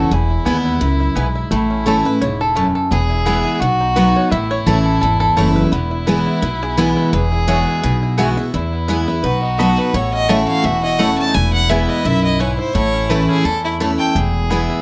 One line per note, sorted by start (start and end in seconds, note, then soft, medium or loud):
0.00 0.10 E4 medium
0.00 0.30 E4 medium
0.00 0.14 F#4 medium
0.00 0.11 A4 medium
0.00 0.12 C#5 loud
0.11 0.37 E1 medium
0.11 0.78 E2 medium
0.11 1.51 E4 loud
0.11 0.62 G#4 medium
0.30 0.46 E4 medium
0.45 0.76 D#2 medium
0.45 0.80 G#3 medium
0.45 0.55 B3 medium
0.45 0.80 B3 medium
0.45 0.56 E4 medium
0.45 0.65 E4 medium
0.45 0.80 E4 loud
0.45 0.56 B4 medium
0.45 0.56 G#5 medium
0.65 1.00 E4 medium
0.81 1.11 C#2 medium
0.81 1.15 F#2 medium
0.81 1.31 B3 medium
1.00 1.17 E4 medium
1.15 1.46 B1 medium
1.15 1.50 G#2 medium
1.15 1.26 B3 medium
1.15 1.26 E4 medium
1.15 1.35 E4 medium
1.15 1.26 B4 medium
1.15 1.26 G#5 medium
1.35 2.06 E4 medium
1.51 2.02 A1 loud
1.51 2.18 A2 loud
1.51 2.01 A3 medium
1.51 2.72 E4 loud
1.70 2.18 C#4 medium
1.86 2.04 E3 medium
1.86 1.96 A3 medium
1.86 2.05 A3 medium
1.86 2.05 C#4 loud
1.86 1.96 E4 medium
1.86 2.04 E4 medium
1.86 2.07 A4 medium
1.86 1.96 C#5 medium
1.86 1.96 A5 medium
2.05 2.21 C#4 soft
2.05 2.21 E4 medium
2.05 2.21 B4 loud
2.21 2.72 E1 medium
2.21 2.55 G#2 medium
2.21 2.41 C#5 loud
2.41 2.73 A4 medium
2.55 2.90 F#2 medium
2.55 2.66 A3 medium
2.55 2.91 C#4 medium
2.55 2.66 E4 loud
2.55 2.66 C#5 medium
2.55 2.66 A5 medium
2.75 2.91 A4 medium
2.90 3.42 E1 loud
2.90 3.59 E2 medium
2.90 3.24 B3 medium
2.90 3.61 G#4 loud
3.10 3.44 E4 soft
3.25 3.60 E3 medium
3.25 3.60 G#3 medium
3.25 3.36 B3 medium
3.25 3.61 B3 medium
3.25 3.60 B3 medium
3.25 3.36 E4 medium
3.25 3.61 E4 medium
3.25 3.36 B4 medium
3.25 3.36 G#5 medium
3.45 3.61 E4 medium
3.60 4.12 B1 medium
3.60 4.29 B2 medium
3.60 4.33 F#4 loud
3.60 3.95 F#4 medium
3.81 4.29 D#4 medium
3.96 4.30 F#3 loud
3.96 4.06 B3 medium
3.96 4.30 B3 loud
3.96 4.31 D#4 loud
3.96 4.06 F#4 medium
3.96 4.31 F#4 medium
3.96 4.16 B4 medium
3.96 4.06 D#5 medium
3.96 4.07 B5 medium
4.16 4.31 C#5 medium
4.31 4.57 A1 medium
4.31 4.99 A2 loud
4.31 5.72 E4 loud
4.31 4.51 E5 loud
4.51 4.84 C#5 loud
4.66 4.97 A1 medium
4.66 5.00 E3 loud
4.66 4.76 A3 medium
4.66 5.01 A3 medium
4.66 5.01 C#4 medium
4.66 4.77 E4 medium
4.66 5.91 E4 medium
4.66 5.01 E4 medium
4.66 4.77 C#5 medium
4.66 4.77 A5 medium
4.86 5.00 A4 medium
5.01 5.32 G#1 medium
5.01 5.69 E2 medium
5.01 5.19 A4 medium
5.20 5.57 A4 loud
5.36 5.67 F#1 medium
5.36 5.71 E3 medium
5.36 5.47 A3 medium
5.36 5.71 A3 medium
5.36 5.56 C#4 medium
5.36 5.71 C#4 medium
5.36 5.47 E4 medium
5.36 5.71 E4 loud
5.36 5.47 C#5 medium
5.36 5.47 A5 medium
5.56 5.91 B4 medium
5.72 6.23 E1 medium
5.72 6.39 E2 loud
5.72 7.12 B3 medium
5.72 7.15 E4 loud
5.91 6.07 E4 soft
6.06 6.41 E3 medium
6.06 6.41 G#3 medium
6.06 6.17 B3 medium
6.06 6.41 B3 medium
6.06 6.17 E4 medium
6.06 6.26 E4 medium
6.06 6.41 E4 loud
6.06 6.17 B4 loud
6.06 6.17 G#5 medium
6.27 6.42 E4 medium
6.42 6.93 B1 medium
6.42 7.10 B2 medium
6.42 6.96 E4 medium
6.63 6.77 G#4 loud
6.77 7.11 E3 medium
6.77 7.11 G#3 loud
6.77 6.87 B3 medium
6.77 7.12 B3 loud
6.77 6.87 E4 medium
6.77 7.12 E4 medium
6.77 7.13 G#4 medium
6.77 6.88 B4 loud
6.77 6.88 G#5 medium
6.97 7.32 E4 medium
7.13 7.64 E1 medium
7.13 7.80 E2 loud
7.13 8.38 G#4 loud
7.13 7.32 B4 medium
7.32 7.66 E4 soft
7.48 7.81 E3 medium
7.48 7.81 G#3 medium
7.48 7.58 B3 medium
7.48 7.82 B3 loud
7.48 7.58 F#4 medium
7.48 7.82 F#4 medium
7.48 7.67 C#5 medium
7.48 7.58 E5 medium
7.48 7.58 G#5 medium
7.67 8.02 E4 medium
7.83 8.35 B1 medium
7.83 8.50 B2 medium
7.83 8.19 B4 medium
8.03 8.18 E4 medium
8.17 8.36 E3 medium
8.17 8.37 G#3 medium
8.17 8.28 B3 medium
8.17 8.37 B3 loud
8.17 8.36 E4 medium
8.17 8.28 F#4 loud
8.17 8.36 F#4 loud
8.17 8.28 E5 medium
8.17 8.28 G#5 loud
8.37 8.53 B3 soft
8.37 8.53 E4 medium
8.37 8.53 F#4 medium
8.54 9.21 E2 medium
8.54 9.05 E2 medium
8.54 9.26 E4 medium
8.54 8.88 E4 medium
8.73 9.07 B3 soft
8.88 9.07 E3 loud
8.88 9.07 G#3 medium
8.88 8.98 B3 medium
8.88 9.07 B3 medium
8.88 8.98 E4 medium
8.88 9.24 E4 medium
8.88 9.07 E4 medium
8.88 8.98 B4 medium
8.88 8.98 G#5 medium
9.08 9.24 B3 medium
9.08 9.24 B3 soft
9.08 9.23 E4 medium
9.23 9.74 B1 medium
9.23 9.91 B2 medium
9.23 9.74 D#4 medium
9.23 9.93 F#4 loud
9.23 9.41 B4 medium
9.43 9.77 B3 medium
9.43 9.61 D#4 soft
9.58 9.93 F#3 medium
9.58 9.68 B3 loud
9.58 9.93 B3 medium
9.58 9.93 D#4 medium
9.58 9.68 F#4 medium
9.58 9.80 F#4 medium
9.58 9.93 F#4 loud
9.58 9.94 A4 medium
9.58 9.69 D#5 medium
9.58 9.69 B5 loud
9.78 9.94 B3 medium
9.78 9.97 B4 medium
9.93 10.45 A1 medium
9.93 10.61 A2 medium
9.93 10.48 E4 medium
9.93 11.24 F#4 loud
9.93 10.13 C#5 medium
10.13 10.61 C#4 soft
10.13 10.31 D#5 loud
10.28 10.63 E3 medium
10.28 10.38 A3 medium
10.28 10.63 A3 loud
10.28 10.63 C#4 medium
10.28 10.39 E4 medium
10.28 10.63 E4 loud
10.28 10.80 A4 medium
10.28 10.39 C#5 medium
10.28 10.48 E5 medium
10.28 10.39 A5 medium
10.48 10.83 E4 medium
10.48 10.66 F5 loud
10.64 11.15 E1 medium
10.64 11.31 E2 medium
10.64 12.04 E3 medium
10.64 10.83 E5 loud
10.84 11.35 E4 medium
10.84 11.01 D#5 medium
10.99 11.33 E3 medium
10.99 11.09 A3 medium
10.99 11.33 A3 medium
10.99 11.33 C#4 medium
10.99 11.09 E4 medium
10.99 11.33 E4 medium
10.99 11.35 A4 medium
10.99 11.09 C#5 medium
10.99 11.18 F#5 medium
10.99 11.09 A5 medium
11.19 11.34 C#4 medium
11.19 11.36 A5 loud
11.28 11.36 D#4 medium
11.34 11.86 E1 loud
11.34 12.02 E2 loud
11.34 12.75 E4 loud
11.34 11.70 E4 medium
11.34 11.53 G#5 loud
11.53 11.88 B3 medium
11.53 11.71 F#5 loud
11.70 12.03 E3 medium
11.70 12.04 G#3 medium
11.70 11.79 B3 medium
11.70 12.04 B3 loud
11.70 12.04 E4 medium
11.70 11.80 E4 medium
11.70 12.04 E4 medium
11.70 11.80 B4 medium
11.70 11.91 E5 medium
11.70 11.80 G#5 loud
11.89 12.23 B3 medium
11.89 12.07 D#5 medium
12.05 12.56 B1 medium
12.05 12.39 F#2 medium
12.05 12.39 E4 medium
12.05 12.24 E5 loud
12.24 12.72 B3 medium
12.24 12.42 D#5 medium
12.39 12.74 G#2 medium
12.39 12.49 B3 medium
12.39 12.50 E4 medium
12.39 12.58 E4 medium
12.39 12.50 B4 medium
12.39 12.58 C#5 medium
12.39 12.50 G#5 loud
12.59 13.80 E4 medium
12.59 12.75 C5 medium
12.74 13.26 A1 loud
12.74 13.42 A2 loud
12.74 13.09 A3 medium
12.74 13.96 E4 loud
12.74 13.11 C#5 loud
12.94 13.28 C#4 medium
13.09 13.44 E3 medium
13.09 13.20 A3 medium
13.09 13.61 A3 medium
13.09 13.44 A3 medium
13.09 13.44 C#4 medium
13.09 13.20 E4 medium
13.09 13.45 E4 medium
13.09 13.29 B4 medium
13.09 13.20 C#5 medium
13.09 13.20 A5 medium
13.29 13.77 C#4 medium
13.29 13.46 G#4 medium
13.45 13.96 E2 medium
13.45 14.12 E2 medium
13.45 13.63 A4 loud
13.45 13.96 A4 medium
13.64 14.13 A3 medium
13.64 13.74 E4 medium
13.80 14.14 E3 medium
13.80 13.90 A3 medium
13.80 14.14 A3 medium
13.80 14.15 C#4 medium
13.80 13.90 E4 medium
13.80 14.14 E4 medium
13.80 14.15 E4 medium
13.80 13.90 C#5 medium
13.80 13.91 A5 loud
13.99 14.16 A4 medium
13.99 14.14 G5 loud
14.15 14.66 E1 medium
14.15 14.82 E2 medium
14.15 14.49 E4 medium
14.15 14.82 G#4 loud
14.50 14.82 E3 medium
14.50 14.82 G#3 medium
14.50 14.60 B3 medium
14.50 14.82 B3 medium
14.50 14.60 E4 medium
14.50 14.69 E4 medium
14.50 14.82 E4 loud
14.50 14.61 B4 medium
14.50 14.61 G#5 loud
14.70 14.82 E4 medium